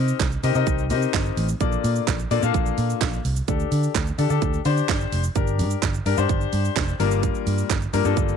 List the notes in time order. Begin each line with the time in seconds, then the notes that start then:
Already playing: C3 C4 D#4 G4 A#4 D#5
0.08 shaker
0.20 C2, kick, snare, clap, closed hi-hat, shaker
0.32 shaker
0.43 C3 C4 D#4 G4 A#4 D#5, open hi-hat, shaker
0.55 C3 C4 D#4 G4 A#4 D#5, shaker
0.67 C2, kick, closed hi-hat, shaker
0.78 shaker
0.90 C3 C4 D#4 G4 A#4 D#5, open hi-hat, shaker
1.02 shaker
1.14 G1, kick, snare, clap, closed hi-hat, shaker
1.26 shaker
1.37 A1, open hi-hat, shaker
1.49 shaker
1.60 A#1 A#3 D4 F4 A4 D5, kick, closed hi-hat, shaker
1.72 shaker
1.84 A#2, open hi-hat, shaker
1.96 shaker
2.08 A#1, kick, snare, clap, closed hi-hat, shaker
2.19 shaker
2.31 A#2 A#3 D4 F4 A4 D5, open hi-hat, shaker
2.42 A#2 A#3 D4 F4 A4 F5, shaker
2.54 A#1, kick, closed hi-hat, shaker
2.66 shaker
2.78 A#2, open hi-hat, shaker
2.90 shaker
3.01 A#1, kick, snare, clap, closed hi-hat, shaker
3.13 shaker
3.25 C2, open hi-hat, shaker
3.36 shaker
3.48 D2 D4 G4 A4, kick, closed hi-hat, shaker
3.60 shaker
3.72 D3, open hi-hat, shaker
3.83 shaker
3.95 D2, kick, snare, clap, closed hi-hat, shaker
4.07 shaker
4.18 D3 D4 G4 A4, open hi-hat, shaker
4.30 D3 D4 G4 A4, shaker
4.42 D2, kick, closed hi-hat, shaker
4.54 shaker
4.65 D3 D4 G4 C5, open hi-hat, shaker
4.77 shaker
4.89 G1, kick, snare, clap, closed hi-hat, shaker
5.01 shaker
5.12 F1, open hi-hat, shaker
5.24 shaker
5.35 G1 D4 G4 A#4, kick, closed hi-hat, shaker
5.47 shaker
5.59 G2, open hi-hat, shaker
5.71 shaker
5.82 G1, kick, snare, clap, closed hi-hat, shaker
5.94 shaker
6.06 G2 D4 G4 A#4, open hi-hat, shaker
6.17 G2 D4 G4 C5, shaker
6.29 G1, kick, closed hi-hat, shaker
6.41 shaker
6.53 G2, open hi-hat, shaker
6.65 shaker
6.76 F1, kick, snare, clap, closed hi-hat, shaker
6.88 shaker
6.99 G1 G3 A#3 D4 F4 A#4, open hi-hat, shaker
7.11 shaker
7.23 kick, closed hi-hat, shaker
7.35 shaker
7.47 G2, open hi-hat, shaker
7.58 shaker
7.70 G1, kick, snare, clap, closed hi-hat, shaker
7.82 shaker
7.93 G2 G3 A#3 D4 F4 A#4, open hi-hat, shaker
8.05 G2 G3 A#3 D4 F4 A4, shaker
8.17 G1, kick, closed hi-hat, shaker
8.29 shaker